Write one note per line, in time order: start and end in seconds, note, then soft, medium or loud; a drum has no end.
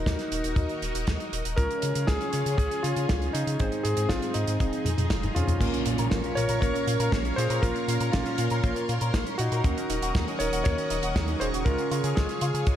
0.00 0.54 D#3 loud
0.00 0.54 D#4 medium
0.00 1.28 D#4 medium
0.00 1.56 D#4 medium
0.00 0.54 F#4 medium
0.00 1.56 F#4 medium
0.00 0.54 A#4 medium
0.00 1.56 A#4 medium
0.00 0.54 D#5 loud
0.06 0.16 D#2 medium
0.06 kick medium
0.06 snare loud
0.06 closed hi-hat medium
0.19 snare soft
0.19 closed hi-hat soft
0.32 0.42 D#1 loud
0.32 closed hi-hat medium
0.44 0.54 D#1 medium
0.44 closed hi-hat medium
0.56 0.67 D#2 loud
0.56 0.86 D#3 medium
0.56 0.86 D#4 medium
0.56 0.86 F#4 medium
0.56 0.86 A#4 medium
0.56 0.86 D#5 medium
0.56 kick loud
0.56 closed hi-hat medium
0.69 closed hi-hat soft
0.82 0.92 D#1 medium
0.82 closed hi-hat medium
0.95 1.05 D#1 loud
0.95 closed hi-hat medium
1.07 1.17 D#2 medium
1.07 kick medium
1.07 snare loud
1.07 closed hi-hat medium
1.20 closed hi-hat soft
1.33 1.43 D#1 medium
1.33 closed hi-hat medium
1.45 1.55 D#1 loud
1.45 closed hi-hat medium
1.56 1.68 C#2 loud
1.56 3.31 C#3 medium
1.56 3.57 C#4 medium
1.56 3.31 C#4 medium
1.56 3.57 F4 medium
1.56 3.31 F4 medium
1.56 3.57 G#4 medium
1.56 3.31 G#4 medium
1.56 2.09 A#4 loud
1.56 3.31 C#5 loud
1.56 kick loud
1.56 closed hi-hat medium
1.71 closed hi-hat soft
1.82 1.93 C#3 medium
1.82 closed hi-hat loud
1.95 2.06 C#3 loud
1.95 closed hi-hat medium
2.07 2.18 C#2 medium
2.07 2.56 G#4 loud
2.07 kick loud
2.07 snare loud
2.07 closed hi-hat medium
2.21 closed hi-hat soft
2.33 2.43 C#3 loud
2.33 closed hi-hat loud
2.46 2.56 C#3 medium
2.46 closed hi-hat medium
2.58 2.68 C#2 loud
2.58 2.84 G#4 loud
2.58 kick loud
2.58 closed hi-hat medium
2.71 closed hi-hat soft
2.83 2.94 C#3 medium
2.83 3.35 F4 loud
2.83 closed hi-hat loud
2.96 3.06 C#3 medium
2.96 closed hi-hat medium
3.09 3.29 C#2 loud
3.09 kick loud
3.09 snare loud
3.09 closed hi-hat medium
3.22 closed hi-hat soft
3.33 3.44 C#3 loud
3.33 3.56 C#4 medium
3.33 3.86 D#4 medium
3.33 3.56 F4 medium
3.33 3.56 G#4 medium
3.33 3.56 F5 loud
3.33 closed hi-hat loud
3.47 3.57 C#3 medium
3.47 closed hi-hat medium
3.59 3.70 G#1 loud
3.59 4.57 G#2 loud
3.59 4.59 C4 medium
3.59 4.57 C4 medium
3.59 5.59 D#4 medium
3.59 4.57 D#4 medium
3.59 4.59 G#4 medium
3.59 4.57 G#4 medium
3.59 4.57 C5 loud
3.59 kick loud
3.59 closed hi-hat medium
3.72 closed hi-hat soft
3.83 3.95 G#2 medium
3.83 4.08 G#4 medium
3.83 closed hi-hat loud
3.97 4.07 G#2 loud
3.97 closed hi-hat medium
4.09 4.20 G#1 medium
4.09 4.35 F4 medium
4.09 kick medium
4.09 snare loud
4.09 closed hi-hat medium
4.22 snare soft
4.22 closed hi-hat soft
4.34 4.45 G#2 loud
4.34 5.31 D#4 medium
4.34 closed hi-hat loud
4.47 4.58 G#2 medium
4.47 closed hi-hat medium
4.60 4.70 F1 loud
4.60 4.89 F3 medium
4.60 4.89 C4 medium
4.60 4.89 D#4 medium
4.60 5.60 F4 medium
4.60 4.89 F4 medium
4.60 5.60 G#4 medium
4.60 4.89 G#4 loud
4.60 kick loud
4.60 closed hi-hat medium
4.73 closed hi-hat soft
4.85 4.95 F2 medium
4.85 closed hi-hat medium
4.85 high tom medium
4.98 5.08 F2 loud
4.98 closed hi-hat medium
4.98 high tom medium
5.10 5.30 F1 loud
5.10 kick loud
5.10 snare loud
5.10 closed hi-hat medium
5.10 mid tom medium
5.23 closed hi-hat soft
5.23 mid tom medium
5.35 5.46 F2 medium
5.35 5.58 C4 medium
5.35 6.33 C#4 medium
5.35 5.58 D#4 medium
5.35 6.39 F4 medium
5.35 5.58 F4 medium
5.35 5.58 G#4 loud
5.35 closed hi-hat loud
5.35 mid tom medium
5.47 5.59 F2 loud
5.47 closed hi-hat medium
5.47 mid tom medium
5.61 5.71 A#1 loud
5.61 7.35 A#2 loud
5.61 5.73 A#3 medium
5.61 7.35 A#3 medium
5.61 7.35 C#4 medium
5.61 7.35 F4 medium
5.61 11.62 A#4 medium
5.61 7.35 A#4 loud
5.61 9.60 C#5 medium
5.61 9.60 F5 medium
5.61 7.61 C#6 medium
5.61 kick loud
5.61 closed hi-hat medium
5.61 crash loud
5.61 impact medium
5.74 5.81 C#4 medium
5.74 closed hi-hat soft
5.86 5.96 A#2 loud
5.86 5.91 F4 loud
5.86 closed hi-hat loud
5.98 6.09 A#2 loud
5.98 6.10 A#4 medium
5.98 closed hi-hat medium
6.11 6.22 A#1 medium
6.11 6.23 A#3 medium
6.11 kick loud
6.11 snare loud
6.11 closed hi-hat medium
6.24 6.32 C#4 medium
6.24 closed hi-hat soft
6.35 6.47 A#2 loud
6.35 6.41 F4 loud
6.35 6.61 A#4 medium
6.35 6.59 C#5 loud
6.35 closed hi-hat loud
6.49 6.59 A#2 medium
6.49 6.61 A#4 medium
6.49 closed hi-hat medium
6.61 6.72 A#1 loud
6.61 6.74 A#3 medium
6.61 7.34 A#4 medium
6.61 7.39 C#5 loud
6.61 kick loud
6.61 closed hi-hat medium
6.75 6.82 C#4 medium
6.75 closed hi-hat soft
6.87 6.97 A#2 medium
6.87 6.92 F4 loud
6.87 closed hi-hat medium
7.00 7.10 A#2 medium
7.00 7.11 A#4 medium
7.00 closed hi-hat medium
7.12 7.32 A#1 loud
7.12 7.24 A#3 medium
7.12 kick loud
7.12 snare loud
7.12 closed hi-hat medium
7.25 7.33 C#4 medium
7.25 closed hi-hat soft
7.36 7.48 A#2 loud
7.36 7.60 A#2 medium
7.36 7.60 A#3 medium
7.36 7.60 C#4 medium
7.36 7.42 F4 loud
7.36 7.60 F4 medium
7.36 7.62 G#4 medium
7.36 7.63 C5 loud
7.36 7.60 C#5 loud
7.36 closed hi-hat loud
7.50 7.60 A#2 medium
7.50 7.62 A#4 medium
7.50 closed hi-hat medium
7.62 7.73 A#1 loud
7.62 8.61 A#2 loud
7.62 8.61 A#3 medium
7.62 7.75 A#3 medium
7.62 8.61 C#4 loud
7.62 8.61 F4 medium
7.62 8.10 F4 medium
7.62 8.14 A#4 loud
7.62 8.61 A#4 loud
7.62 9.63 C6 medium
7.62 kick loud
7.62 closed hi-hat medium
7.76 7.83 C#4 medium
7.76 closed hi-hat soft
7.88 7.98 A#2 medium
7.88 7.93 F4 loud
7.88 closed hi-hat loud
8.00 8.11 A#2 loud
8.00 8.12 A#4 medium
8.00 closed hi-hat medium
8.12 8.24 A#1 medium
8.12 8.25 A#3 medium
8.12 9.11 C#4 medium
8.12 9.09 F4 medium
8.12 kick loud
8.12 snare loud
8.12 closed hi-hat medium
8.26 8.34 C#4 medium
8.26 snare soft
8.26 closed hi-hat soft
8.38 8.48 A#2 loud
8.38 8.43 F4 loud
8.38 closed hi-hat loud
8.50 8.61 A#2 medium
8.50 8.63 A#4 medium
8.50 closed hi-hat medium
8.64 8.74 A#1 loud
8.64 8.92 A#2 medium
8.64 8.92 A#3 medium
8.64 8.75 A#3 medium
8.64 8.92 C#4 medium
8.64 8.92 F4 medium
8.64 8.92 A#4 loud
8.64 kick loud
8.64 closed hi-hat medium
8.76 8.84 C#4 medium
8.76 closed hi-hat soft
8.89 8.99 A#2 medium
8.89 8.94 F4 loud
8.89 closed hi-hat medium
9.01 9.11 A#2 loud
9.01 9.13 A#4 medium
9.01 closed hi-hat medium
9.14 9.24 A#1 medium
9.14 9.26 A#3 medium
9.14 kick loud
9.14 snare loud
9.14 closed hi-hat medium
9.27 9.34 C#4 medium
9.27 closed hi-hat soft
9.38 9.49 A#2 medium
9.38 10.37 D#4 medium
9.38 9.44 F4 loud
9.38 10.42 F#4 loud
9.38 closed hi-hat loud
9.52 9.62 A#2 medium
9.52 9.64 A#4 medium
9.52 closed hi-hat medium
9.64 9.74 D#2 loud
9.64 11.38 D#3 loud
9.64 9.76 A#3 medium
9.64 11.38 C#4 medium
9.64 11.38 D#4 medium
9.64 11.38 F#4 medium
9.64 11.38 A#4 loud
9.64 11.64 D#5 medium
9.64 11.64 F#5 medium
9.64 12.76 C#6 medium
9.64 kick loud
9.64 closed hi-hat medium
9.77 9.85 C#4 medium
9.77 closed hi-hat soft
9.90 10.00 D#1 medium
9.90 9.94 D#4 loud
9.90 closed hi-hat loud
10.02 10.12 D#1 loud
10.02 10.14 F#4 medium
10.02 closed hi-hat medium
10.15 10.25 D#2 medium
10.15 10.27 A#3 medium
10.15 kick loud
10.15 snare loud
10.15 closed hi-hat medium
10.28 10.35 C#4 medium
10.28 closed hi-hat soft
10.39 10.50 D#1 loud
10.39 10.45 D#4 loud
10.39 10.64 A#4 medium
10.39 10.63 C#5 loud
10.39 closed hi-hat loud
10.53 10.63 D#1 medium
10.53 10.64 F#4 medium
10.53 closed hi-hat medium
10.64 10.76 D#2 loud
10.64 10.77 A#3 medium
10.64 11.38 A#4 medium
10.64 11.43 C#5 loud
10.64 kick loud
10.64 closed hi-hat medium
10.78 10.86 C#4 medium
10.78 closed hi-hat soft
10.90 11.00 D#1 medium
10.90 10.95 D#4 loud
10.90 closed hi-hat loud
11.03 11.13 D#1 medium
11.03 11.15 F#4 medium
11.03 closed hi-hat medium
11.16 11.36 D#2 loud
11.16 11.27 A#3 medium
11.16 kick loud
11.16 snare loud
11.16 closed hi-hat medium
11.28 11.36 C#4 medium
11.28 closed hi-hat soft
11.40 11.51 D#1 loud
11.40 11.63 C#3 medium
11.40 11.63 C#4 medium
11.40 11.63 D#4 medium
11.40 11.46 D#4 loud
11.40 11.63 F#4 medium
11.40 11.48 G#4 medium
11.40 11.46 C5 loud
11.40 11.63 C#5 loud
11.40 closed hi-hat medium
11.53 11.63 D#1 medium
11.53 11.65 F#4 medium
11.53 closed hi-hat medium
11.65 11.76 C#2 loud
11.65 12.64 C#3 loud
11.65 11.78 G#3 medium
11.65 12.64 C#4 medium
11.65 12.64 F4 medium
11.65 12.14 F4 medium
11.65 12.76 G#4 medium
11.65 12.64 G#4 medium
11.65 12.18 A#4 loud
11.65 12.76 C#5 medium
11.65 12.64 C#5 loud
11.65 12.76 F5 medium
11.65 kick loud
11.65 closed hi-hat medium
11.78 11.87 C#4 medium
11.78 closed hi-hat soft
11.91 12.01 C#3 medium
11.91 11.96 F4 loud
11.91 closed hi-hat medium
12.04 12.14 C#3 loud
12.04 12.16 G#4 medium
12.04 closed hi-hat medium
12.15 12.27 C#2 medium
12.15 12.28 G#3 medium
12.15 12.76 F4 medium
12.15 12.76 G#4 medium
12.15 kick loud
12.15 snare loud
12.15 closed hi-hat medium
12.29 12.37 C#4 medium
12.29 snare soft
12.29 closed hi-hat soft
12.41 12.52 C#3 loud
12.41 12.46 F4 loud
12.41 closed hi-hat loud
12.54 12.64 C#3 medium
12.54 12.66 G#4 medium
12.54 closed hi-hat medium
12.67 12.76 C#2 loud
12.67 12.76 C#3 medium
12.67 12.76 G#3 medium
12.67 12.76 C#4 medium
12.67 12.76 F4 medium
12.67 12.76 G#4 medium
12.67 12.76 C#5 loud
12.67 kick loud
12.67 closed hi-hat medium